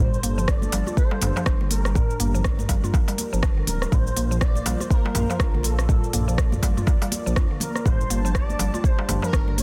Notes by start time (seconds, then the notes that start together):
0.00 G1 G3 D4 A4 C5
0.14 shaker
0.23 G1 A#3, open hi-hat, shaker
0.38 F3, shaker
0.48 D5, kick, cross-stick, shaker
0.62 high conga, shaker
0.72 G1 G3, open hi-hat, darbuka tek, low conga, shaker
0.87 F4, high conga, shaker
0.97 C5, kick, shaker
1.11 G3, darbuka tek
1.21 G1, mid tom, open hi-hat, high conga, darbuka tek, low conga, shaker
1.36 F3, darbuka ka, shaker
1.46 G1 D4, kick, cross-stick, shaker
1.61 D3, high conga
1.71 A#4, open hi-hat, high conga, shaker
1.85 cross-stick, shaker
1.95 G3 A#4, kick, darbuka dum, shaker
2.10 shaker
2.20 G1 A#3, mid tom, open hi-hat, shaker
2.35 F3, shaker
2.44 kick, cross-stick, shaker
2.59 mid tom, high conga, shaker
2.69 G1 G3, kick, open hi-hat, darbuka tek, low conga, shaker
2.84 F4, mid tom, high conga, shaker
2.94 kick, darbuka tek, low conga, shaker
3.08 G3, open hi-hat, darbuka ka
3.18 open hi-hat, high conga, shaker
3.33 G1 F3, shaker
3.43 D4, kick, cross-stick, shaker
3.57 D3
3.67 D1 A#4, open hi-hat, high conga, low conga, shaker
3.82 cross-stick, shaker
3.92 A#1 G3 A#3 F4 C5, kick, darbuka tek, darbuka dum, shaker
4.07 shaker
4.16 A#1 A#3, open hi-hat, shaker
4.31 F3, shaker
4.41 D5, kick, cross-stick, shaker
4.56 high conga, shaker
4.66 A#1 G3, open hi-hat, darbuka tek, low conga, shaker
4.80 F4, high conga, shaker
4.90 A#4, kick, shaker
5.05 G3, darbuka tek
5.15 A#1, mid tom, open hi-hat, darbuka tek, high conga, low conga, shaker
5.30 F3, darbuka ka, shaker
5.40 A#1 D4, kick, cross-stick, shaker
5.54 D3, high conga
5.63 A4, open hi-hat, high conga, shaker
5.79 cross-stick, shaker
5.88 G3 D5, kick, darbuka dum, shaker
6.04 shaker
6.13 A#1 A#3, mid tom, open hi-hat, shaker
6.28 F3, shaker
6.38 kick, cross-stick, shaker
6.52 mid tom, high conga, shaker
6.62 A#1 G3, kick, open hi-hat, darbuka tek, low conga, shaker
6.77 F4, mid tom, high conga, shaker
6.87 kick, darbuka tek, low conga, shaker
7.02 G3, open hi-hat, darbuka ka
7.12 open hi-hat, high conga, shaker
7.26 A#1 F3, shaker
7.36 F2 D4, kick, cross-stick, shaker
7.51 D3
7.60 A#4, open hi-hat, high conga, low conga, shaker
7.76 cross-stick, shaker
7.85 G1 G3 D4 C5 A5, kick, darbuka tek, darbuka dum, shaker
8.01 shaker
8.10 G1 A#3, open hi-hat, shaker
8.25 F3, shaker
8.35 D5, kick, cross-stick, shaker
8.50 high conga, shaker
8.59 G1 G3, open hi-hat, darbuka tek, low conga, shaker
8.74 F4, high conga, shaker
8.84 C5, kick, shaker
8.98 G3, darbuka tek
9.09 G1, mid tom, open hi-hat, high conga, darbuka tek, low conga, shaker
9.22 F3 A#4, darbuka ka, shaker
9.33 G1 D4, kick, cross-stick, shaker
9.48 D3, high conga
9.58 D5, open hi-hat, high conga, shaker